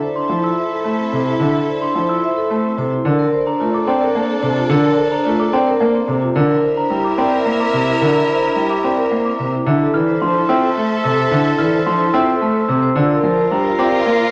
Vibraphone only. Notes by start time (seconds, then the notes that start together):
0.03 C5
0.16 D4
0.30 E4
0.44 F4
0.58 C5
0.72 A4
0.85 C5
0.99 C4
1.13 C5
1.27 E4
1.40 A4
1.55 A4
1.68 C5
1.82 D4
1.96 E4
2.09 F4
2.23 C5
2.37 A4
2.51 C5
2.64 C4
2.78 C5
2.92 E4
3.05 A#4
3.19 A#4
3.33 C5
3.46 D4
3.60 F4
3.74 A4
3.87 C5
4.01 A#4
4.15 C5
4.29 C4
4.42 C5
4.56 F4
4.70 A#4
4.83 A#4
4.97 C5
5.12 D4
5.25 F4
5.39 A4
5.53 C5
5.66 A#4
5.80 C5
5.94 C4
6.07 C5
6.21 F4
6.35 A#4
6.49 A#4
6.63 C5
6.76 D4
6.90 E4
7.04 G4
7.18 C5
7.31 A#4
7.45 C5
7.59 C4
7.73 C5
7.87 E4
8.01 A#4
8.14 A#4
8.28 C5
8.42 D4
8.56 E4
8.69 G4
8.83 C5
8.97 A#4
9.11 C5
9.25 C4
9.39 C5
9.52 E4
9.67 E4
9.80 A4
9.94 A4
10.07 C5
10.21 D4
10.34 E4
10.49 F4
10.62 C5
10.76 A4
10.90 C5
11.03 C4
11.17 C5
11.31 E4
11.45 A4
11.59 A4
11.73 C5
11.87 D4
12.00 E4
12.14 F4
12.28 C5
12.41 A4
12.55 C5
12.69 C4
12.82 C5
12.96 F4
13.10 A#4
13.24 A#4
13.37 C5
13.52 D4
13.65 F4
13.79 G4
13.92 C5
14.06 A#4